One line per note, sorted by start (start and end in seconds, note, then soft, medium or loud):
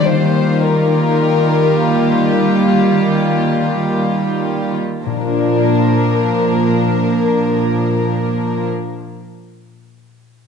0.00 3.76 D#3 soft
0.00 4.76 D#3 soft
0.00 4.76 G3 medium
0.00 3.81 A#3 soft
0.00 3.85 F4 soft
0.00 4.76 F4 medium
0.00 3.89 G4 soft
0.00 4.76 G4 medium
0.04 4.76 A#3 medium
0.04 0.62 C5 medium
0.63 2.41 A#4 medium
5.04 8.66 A#2 soft
5.04 8.96 A#2 soft
5.04 8.67 F3 soft
5.04 8.67 A#3 soft
5.04 8.65 D4 soft
5.04 8.66 A#4 soft
5.04 8.67 A#4 soft
5.13 8.74 A#3 soft
5.20 8.81 D4 soft
5.27 8.88 F4 soft
5.34 8.95 D5 soft